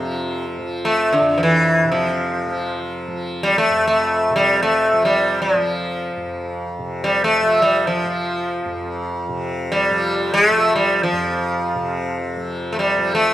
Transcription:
0.00 1.20 F2 medium
0.00 0.44 C3 medium
0.00 1.84 C3 soft
0.00 0.59 F3 medium
0.59 2.47 F3 soft
0.85 1.14 A3 medium
1.13 1.38 D3 medium
1.21 3.69 F2 soft
1.38 1.42 F3 soft
1.43 1.91 E3 medium
1.85 4.30 C3 soft
1.92 2.77 F3 medium
2.47 3.08 F3 medium
3.08 4.93 F3 medium
3.43 3.58 G3 medium
3.58 3.86 A3 medium
3.70 6.16 F2 soft
3.87 4.35 A3 medium
4.30 6.78 C3 soft
4.36 4.62 G3 medium
4.63 5.05 A3 medium
4.93 5.55 F3 soft
5.05 5.41 G3 medium
5.42 6.65 F3 medium
5.55 7.42 F3 medium
6.16 8.65 F2 soft
6.79 9.28 C3 soft
7.04 7.24 G3 medium
7.24 7.62 A3 medium
7.42 8.04 F3 medium
7.62 7.87 G3 medium
7.87 9.23 F3 medium
8.04 9.91 F3 medium
8.65 11.12 F2 medium
9.29 11.75 C3 medium
9.72 10.33 G3 medium
9.91 10.50 F3 medium
10.34 10.49 G#3 medium
10.49 12.36 F3 medium
10.49 10.75 A3 medium
10.76 11.03 G3 medium
11.03 12.16 F3 medium
11.13 13.34 F2 medium
11.75 13.34 C3 medium
12.36 12.98 F3 soft
12.73 12.79 A3 soft
12.79 13.14 G3 medium
12.98 13.34 F3 medium
13.15 13.34 A3 medium

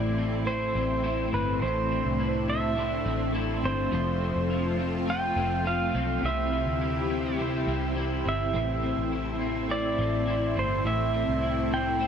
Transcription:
0.00 0.71 A1 medium
0.00 0.45 A2 medium
0.00 1.60 A2 medium
0.00 0.46 E3 medium
0.00 0.45 A3 medium
0.00 6.19 A3 medium
0.00 0.17 C4 medium
0.00 0.47 C4 medium
0.00 3.88 C4 medium
0.00 0.45 E4 medium
0.00 0.48 E4 medium
0.00 1.59 E4 medium
0.00 0.50 C5 medium
0.00 1.66 C5 medium
0.00 0.47 D5 medium
0.18 0.75 C4 medium
0.45 1.02 A3 medium
0.45 1.04 C4 medium
0.45 1.03 E4 medium
0.45 1.05 E4 medium
0.45 1.36 C5 medium
0.50 1.08 C5 medium
0.75 1.30 A1 medium
0.75 1.32 C4 medium
1.02 1.63 A3 medium
1.02 1.65 C4 medium
1.02 2.18 E4 medium
1.02 1.63 E4 medium
1.08 1.67 C5 medium
1.33 1.60 G1 medium
1.33 1.90 C4 medium
1.33 1.62 B4 medium
1.59 2.03 A1 loud
1.59 2.76 A2 medium
1.59 3.92 A2 medium
1.59 2.77 E3 medium
1.59 2.75 A3 medium
1.59 3.90 D4 medium
1.59 2.51 C5 medium
1.65 2.77 C4 medium
1.65 2.78 E4 medium
1.65 2.80 C5 loud
1.91 2.48 C4 medium
2.05 3.02 C2 medium
2.19 2.76 E4 medium
2.48 3.05 C4 medium
2.48 3.31 E5 medium
2.75 3.32 A3 medium
2.75 3.34 C4 medium
2.75 3.33 E4 medium
2.75 3.35 E4 medium
2.80 3.38 C5 medium
3.06 3.61 A1 loud
3.06 3.63 C4 medium
3.32 3.92 A3 medium
3.32 3.93 C4 medium
3.32 3.98 E4 medium
3.32 3.93 E4 medium
3.38 3.94 C5 medium
3.63 3.91 G1 medium
3.63 4.20 C4 medium
3.63 4.76 C5 loud
3.91 4.34 F1 loud
3.91 4.78 F3 medium
3.91 6.23 F3 medium
3.91 4.79 A3 medium
3.91 4.83 C4 medium
3.91 12.07 C4 medium
3.91 6.21 F4 loud
3.91 4.80 F4 loud
3.91 4.77 C5 medium
4.21 4.78 C4 medium
4.36 5.33 F1 medium
4.50 5.06 F4 medium
4.78 5.36 C4 medium
4.78 5.09 F4 soft
4.78 5.07 C5 medium
4.83 5.07 C4 soft
5.06 5.62 A3 medium
5.06 5.66 C4 medium
5.06 5.64 F4 medium
5.06 5.66 F4 medium
5.06 5.67 G5 loud
5.11 5.69 C5 medium
5.36 5.91 F1 medium
5.36 5.94 C4 medium
5.64 6.22 A3 medium
5.64 6.26 C4 medium
5.64 6.29 F4 medium
5.64 6.24 F4 medium
5.64 6.25 F5 loud
5.69 6.28 C5 medium
5.94 6.22 B1 medium
5.94 6.52 C4 medium
6.21 6.64 C2 loud
6.21 7.37 C3 medium
6.21 8.54 C3 medium
6.21 8.52 C3 medium
6.21 8.53 E3 medium
6.21 7.35 G3 medium
6.21 8.52 E4 medium
6.21 8.52 G4 medium
6.26 7.38 C4 loud
6.26 7.40 E4 medium
6.26 7.41 C5 medium
6.26 7.36 E5 medium
6.52 7.09 C4 medium
6.66 7.63 D2 medium
6.81 7.39 E4 medium
7.10 7.67 C4 medium
7.37 7.93 G3 medium
7.37 7.96 C4 medium
7.37 7.96 E4 medium
7.41 7.98 E4 medium
7.41 7.99 C5 medium
7.67 8.22 C2 medium
7.67 8.25 C4 medium
7.94 8.53 G3 medium
7.94 8.54 C4 medium
7.94 9.11 E4 medium
7.94 8.55 E4 medium
8.00 8.56 C5 medium
8.25 8.53 G1 medium
8.25 8.83 C4 soft
8.25 9.75 E5 medium
8.53 8.95 A1 loud
8.53 9.40 A2 medium
8.53 10.84 A2 medium
8.53 9.40 E3 medium
8.53 12.07 A3 medium
8.53 9.44 A3 medium
8.53 9.42 C4 medium
8.53 12.07 E4 medium
8.53 9.40 E4 medium
8.53 9.39 C5 medium
8.83 9.40 C4 medium
8.97 9.94 A1 medium
9.12 9.68 E4 medium
9.39 9.98 C4 medium
9.39 9.69 C4 soft
9.39 9.70 E4 soft
9.39 9.69 C5 medium
9.44 9.67 A3 soft
9.68 10.25 A3 medium
9.68 10.28 C4 medium
9.68 10.26 E4 medium
9.68 10.28 E4 medium
9.68 10.60 D5 medium
9.73 10.31 C5 medium
9.98 10.53 A1 medium
9.98 10.55 C4 medium
10.26 10.85 A3 medium
10.26 10.86 C4 medium
10.26 11.41 E4 medium
10.26 10.86 E4 medium
10.31 10.88 C5 medium
10.56 10.83 G1 medium
10.56 11.13 C4 medium
10.56 10.87 C5 medium
10.84 11.26 A1 loud
10.84 11.71 A2 medium
10.84 12.07 A2 medium
10.84 11.71 E3 medium
10.84 11.76 A3 medium
10.84 11.74 C4 loud
10.84 11.72 E4 medium
10.84 11.70 C5 loud
10.84 11.73 E5 loud
11.14 11.71 C4 medium
11.28 12.07 C2 medium
11.42 11.99 E4 medium
11.71 12.07 C4 medium
11.71 12.00 C4 soft
11.71 12.01 E4 soft
11.71 12.00 C5 soft
11.71 12.07 G5 loud
11.76 11.98 A3 soft
11.99 12.07 A3 medium
11.99 12.07 C4 medium
11.99 12.07 E4 medium

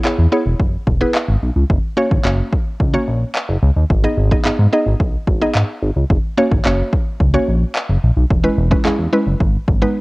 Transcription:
0.05 0.10 E2 soft
0.05 0.27 B3 medium
0.05 0.27 E4 medium
0.05 0.27 G#4 medium
0.05 0.27 C#5 medium
0.05 clap loud
0.18 0.27 E2 loud
0.32 0.88 B3 medium
0.32 0.88 E4 medium
0.32 0.88 G#4 medium
0.32 0.88 C#5 medium
0.46 0.54 E1 medium
0.60 0.76 F#1 loud
0.60 kick medium
0.87 1.04 E1 loud
0.87 kick medium
1.01 1.70 B3 medium
1.01 1.70 E4 medium
1.01 1.70 G#4 medium
1.01 1.70 B4 loud
1.15 clap loud
1.28 1.37 G#1 medium
1.42 1.51 B1 medium
1.56 1.64 C#2 medium
1.70 1.78 F#1 loud
1.70 kick loud
1.97 2.19 A#3 medium
1.97 2.19 C#4 medium
1.97 2.20 F#4 medium
1.97 2.20 C#5 loud
2.11 2.19 G#1 medium
2.11 kick loud
2.25 2.41 F#1 loud
2.25 2.80 A#3 loud
2.25 2.80 C#4 medium
2.25 2.80 F#4 medium
2.25 2.81 C#5 loud
2.25 clap loud
2.53 kick loud
2.80 2.97 C#2 medium
2.80 kick medium
2.94 3.83 A#3 medium
2.94 3.83 C#4 medium
2.94 3.83 F#4 medium
2.94 3.83 C#5 loud
3.08 3.24 A#1 medium
3.35 clap loud
3.49 3.57 F#1 loud
3.63 3.71 C#2 medium
3.76 3.85 D#2 medium
3.90 4.07 G#1 loud
3.90 kick loud
4.04 4.26 B3 medium
4.04 4.26 D#4 medium
4.04 4.26 G#4 medium
4.04 4.26 D#5 loud
4.17 4.34 G#1 loud
4.31 4.42 B3 medium
4.31 4.42 D#4 medium
4.31 4.43 G#4 medium
4.31 4.43 D#5 medium
4.31 kick loud
4.45 4.50 G#2 soft
4.45 4.67 B3 medium
4.45 4.67 D#4 medium
4.45 4.67 G#4 medium
4.45 4.68 D#5 loud
4.45 clap loud
4.59 4.67 G#2 loud
4.72 5.28 B3 medium
4.72 5.28 D#4 medium
4.72 5.28 G#4 medium
4.72 5.28 D#5 medium
4.86 4.95 G#1 medium
5.00 5.17 B1 medium
5.00 kick medium
5.27 5.44 G#1 loud
5.27 kick medium
5.42 6.10 B3 medium
5.42 6.10 D#4 medium
5.42 6.10 G#4 medium
5.42 6.11 D#5 loud
5.55 5.63 G#2 loud
5.55 clap loud
5.83 5.91 G#1 medium
5.96 6.05 C#2 medium
6.10 6.18 F#1 loud
6.10 kick loud
6.37 6.60 A#3 medium
6.37 6.60 C#4 medium
6.37 6.60 F#4 medium
6.37 6.60 C#5 loud
6.51 6.60 G#1 medium
6.51 kick loud
6.65 6.82 F#1 medium
6.65 7.21 A#3 medium
6.65 7.21 C#4 medium
6.65 7.21 F#4 medium
6.65 7.21 C#5 loud
6.65 clap loud
6.93 kick loud
7.20 7.37 C#2 medium
7.20 kick medium
7.34 8.23 A#3 loud
7.34 8.23 C#4 medium
7.34 8.23 F#4 medium
7.34 8.23 C#5 loud
7.48 7.64 A#1 medium
7.76 clap loud
7.89 7.98 F#1 medium
8.03 8.11 A#1 medium
8.17 8.25 B1 medium
8.30 8.47 E1 loud
8.30 kick loud
8.44 8.66 G#3 medium
8.44 8.66 C#4 medium
8.44 8.66 E4 medium
8.44 8.66 B4 loud
8.58 8.75 E1 loud
8.71 8.83 G#3 medium
8.71 8.83 C#4 medium
8.71 8.83 E4 medium
8.71 8.83 B4 medium
8.71 kick loud
8.85 8.91 E2 soft
8.85 9.08 G#3 medium
8.85 9.08 C#4 medium
8.85 9.08 E4 medium
8.85 9.08 G#4 medium
8.85 clap loud
8.99 9.07 E2 medium
9.13 9.41 G#3 medium
9.13 9.41 C#4 medium
9.13 9.41 E4 medium
9.13 9.41 B4 medium
9.26 9.35 F#1 medium
9.40 9.57 G#1 loud
9.40 kick medium
9.68 9.85 G#1 medium
9.68 kick medium
9.82 10.01 G#3 medium
9.82 10.01 B3 medium
9.82 10.01 D#4 medium
9.82 10.01 B4 loud

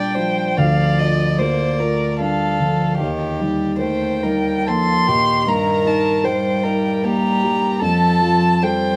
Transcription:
0.00 0.53 A#2 medium
0.00 0.57 G3 medium
0.00 0.41 D4 medium
0.00 0.60 F4 soft
0.00 0.60 A#4 soft
0.00 0.16 D5 medium
0.00 0.59 G5 medium
0.14 0.58 F3 soft
0.14 0.58 C5 medium
0.57 2.96 D2 medium
0.57 1.41 F3 medium
0.57 1.40 D5 medium
0.57 1.00 F5 medium
0.99 1.64 F4 soft
0.99 1.41 D#5 medium
1.38 1.82 A#3 medium
1.38 2.04 A#4 soft
1.38 1.81 C5 medium
1.38 2.19 D5 medium
1.80 2.22 A3 medium
1.80 2.44 F4 soft
1.80 2.20 A#4 medium
2.20 2.62 G3 medium
2.20 2.84 D4 soft
2.20 2.98 A4 medium
2.20 2.98 F5 medium
2.60 3.00 D3 soft
2.60 2.99 F3 medium
2.99 5.44 D#2 soft
2.99 3.42 D#3 medium
2.99 3.77 G4 medium
3.39 3.82 G3 medium
3.39 4.05 D#4 soft
3.79 4.25 A3 medium
3.79 4.49 A#4 soft
3.79 4.25 C5 medium
3.79 4.69 G5 medium
4.23 4.69 G3 medium
4.23 4.92 D#4 soft
4.23 4.68 A#4 medium
4.67 5.10 F3 medium
4.67 5.32 A#3 soft
4.67 5.09 A4 medium
4.67 5.50 C6 loud
5.08 5.47 A#2 soft
5.08 6.26 D#3 medium
5.08 5.47 G4 medium
5.47 7.79 G2 soft
5.47 6.26 A#4 medium
5.47 5.89 A#5 medium
5.85 6.48 D#4 soft
5.85 6.27 A5 medium
6.24 7.86 G3 medium
6.24 6.88 A#4 soft
6.24 6.65 C5 medium
6.24 7.06 G5 medium
6.63 7.29 D#4 soft
6.63 7.05 A#4 medium
7.03 7.67 A#3 medium
7.03 7.81 G4 medium
7.03 7.83 A#5 medium
7.44 7.83 G3 soft
7.80 8.96 F2 medium
7.80 8.63 A4 medium
7.84 8.23 F3 medium
7.84 8.64 A5 medium
8.22 8.64 F3 medium
8.22 8.86 F4 soft
8.62 8.96 G3 medium
8.62 8.96 A4 soft
8.62 8.96 C5 medium
8.62 8.96 G5 medium

